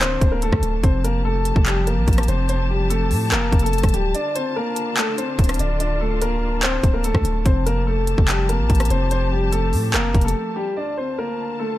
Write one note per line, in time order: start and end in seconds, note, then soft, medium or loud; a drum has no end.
0.00 0.17 D1 loud
0.00 0.80 D3 medium
0.00 0.30 C4 medium
0.00 0.80 D4 medium
0.00 0.80 F4 medium
0.00 0.30 C5 loud
0.00 7.42 A5 loud
0.00 clap loud
0.00 closed hi-hat medium
0.21 0.51 D1 loud
0.21 kick loud
0.21 closed hi-hat medium
0.32 0.41 A#3 medium
0.32 0.40 A#4 medium
0.42 0.82 A3 medium
0.42 0.81 A4 medium
0.42 closed hi-hat medium
0.52 0.62 D2 loud
0.52 kick loud
0.52 cross-stick loud
0.63 0.83 D1 loud
0.63 closed hi-hat medium
0.83 1.53 F1 loud
0.83 4.11 F3 medium
0.83 4.11 C4 medium
0.83 1.01 C4 medium
0.83 4.11 G4 medium
0.83 1.00 C5 medium
0.83 kick loud
0.83 closed hi-hat medium
1.04 1.22 A#3 medium
1.04 1.21 A#4 medium
1.04 closed hi-hat medium
1.25 1.64 A3 medium
1.25 1.64 A4 medium
1.45 closed hi-hat medium
1.56 1.99 F1 loud
1.56 kick loud
1.66 1.84 G3 medium
1.66 1.83 G4 medium
1.66 clap loud
1.66 closed hi-hat medium
1.87 2.26 A#3 medium
1.87 2.26 A#4 medium
1.87 closed hi-hat medium
1.97 2.07 A1 loud
2.08 2.28 A1 loud
2.08 kick loud
2.08 closed hi-hat medium
2.13 closed hi-hat medium
2.18 cross-stick loud
2.18 closed hi-hat medium
2.23 closed hi-hat medium
2.28 3.13 F1 loud
2.28 2.46 C4 medium
2.28 2.45 C5 medium
2.28 closed hi-hat medium
2.49 2.66 C4 medium
2.49 2.66 C5 medium
2.49 closed hi-hat medium
2.70 2.87 G3 medium
2.70 2.87 G4 medium
2.90 3.30 A3 medium
2.90 3.29 A4 medium
2.90 closed hi-hat medium
3.11 3.33 A2 loud
3.11 open hi-hat medium
3.32 3.51 F1 loud
3.32 3.62 A#3 medium
3.32 3.61 A#4 medium
3.32 clap loud
3.32 closed hi-hat medium
3.52 3.82 F1 loud
3.52 kick loud
3.52 closed hi-hat soft
3.59 3.92 A4 medium
3.59 closed hi-hat medium
3.64 3.92 A3 medium
3.64 closed hi-hat medium
3.73 closed hi-hat medium
3.78 closed hi-hat medium
3.83 3.93 F1 loud
3.83 kick loud
3.83 cross-stick medium
3.83 closed hi-hat medium
3.89 closed hi-hat medium
3.94 4.14 D1 loud
3.94 4.11 G3 medium
3.94 4.11 G4 medium
3.94 closed hi-hat medium
4.15 7.42 D3 medium
4.15 7.42 D4 medium
4.15 4.32 D4 medium
4.15 7.42 F4 medium
4.15 4.31 D5 medium
4.15 closed hi-hat medium
4.35 4.53 C4 medium
4.35 4.52 C5 medium
4.35 closed hi-hat medium
4.56 4.95 A#3 medium
4.56 4.95 A#4 medium
4.76 closed hi-hat medium
4.97 5.15 A3 medium
4.97 5.14 A4 medium
4.97 clap loud
4.97 closed hi-hat medium
5.18 5.57 C4 medium
5.18 5.57 C5 medium
5.18 closed hi-hat medium
5.39 5.59 D1 loud
5.39 kick loud
5.39 closed hi-hat medium
5.44 closed hi-hat medium
5.49 cross-stick loud
5.49 closed hi-hat medium
5.54 closed hi-hat medium
5.59 6.80 D1 loud
5.59 5.77 D4 medium
5.59 5.76 D5 medium
5.59 closed hi-hat medium
5.80 5.97 D4 medium
5.80 5.97 D5 medium
5.80 closed hi-hat medium
6.01 6.18 A3 medium
6.01 6.18 A4 medium
6.22 6.61 A#3 medium
6.22 6.61 A#4 medium
6.22 closed hi-hat medium
6.63 6.92 C4 medium
6.63 6.92 C5 loud
6.63 clap loud
6.63 closed hi-hat medium
6.83 7.13 D1 loud
6.83 kick loud
6.83 closed hi-hat medium
6.94 7.03 A#3 medium
6.94 7.02 A#4 medium
7.04 7.44 A3 medium
7.04 7.43 A4 loud
7.04 closed hi-hat medium
7.15 7.25 D2 loud
7.15 kick loud
7.15 cross-stick medium
7.25 7.45 D1 loud
7.25 closed hi-hat medium
7.46 8.15 F1 loud
7.46 10.73 F3 medium
7.46 10.73 C4 medium
7.46 7.63 C4 medium
7.46 10.73 G4 medium
7.46 7.62 C5 medium
7.46 10.73 A5 medium
7.46 kick loud
7.46 closed hi-hat medium
7.66 7.84 A#3 medium
7.66 7.83 A#4 medium
7.66 closed hi-hat medium
7.87 8.26 A3 medium
7.87 8.26 A4 medium
8.07 closed hi-hat medium
8.18 8.61 F1 loud
8.18 kick loud
8.28 8.46 G3 medium
8.28 8.45 G4 medium
8.28 clap loud
8.28 closed hi-hat medium
8.49 8.88 A#3 medium
8.49 8.88 A#4 medium
8.49 closed hi-hat medium
8.59 8.69 A1 loud
8.70 8.90 A1 loud
8.70 kick loud
8.70 closed hi-hat medium
8.75 closed hi-hat medium
8.80 cross-stick loud
8.80 closed hi-hat medium
8.85 closed hi-hat medium
8.90 9.75 F1 loud
8.90 9.08 C4 medium
8.90 9.07 C5 medium
8.90 closed hi-hat medium
9.11 9.28 C4 medium
9.11 9.28 C5 medium
9.11 closed hi-hat medium
9.32 9.49 G3 medium
9.32 9.49 G4 medium
9.52 9.92 A3 medium
9.52 9.91 A4 medium
9.52 closed hi-hat medium
9.73 9.95 A2 loud
9.73 open hi-hat medium
9.94 10.14 F1 loud
9.94 10.24 A#3 medium
9.94 10.23 A#4 loud
9.94 clap loud
9.94 closed hi-hat medium
10.15 10.34 F1 loud
10.15 kick loud
10.15 closed hi-hat soft
10.21 10.54 A4 medium
10.21 closed hi-hat medium
10.26 10.54 A3 medium
10.26 closed hi-hat medium
10.56 10.73 G3 medium
10.56 10.73 G4 medium
10.77 11.78 D2 medium
10.77 11.78 D3 medium
10.77 10.94 D4 medium
10.77 11.78 F4 medium
10.77 10.93 D5 medium
10.77 11.78 A5 medium
10.97 11.15 C4 medium
10.97 11.14 C5 medium
11.19 11.58 A#3 medium
11.19 11.57 A#4 medium
11.59 11.77 A3 medium
11.59 11.76 A4 medium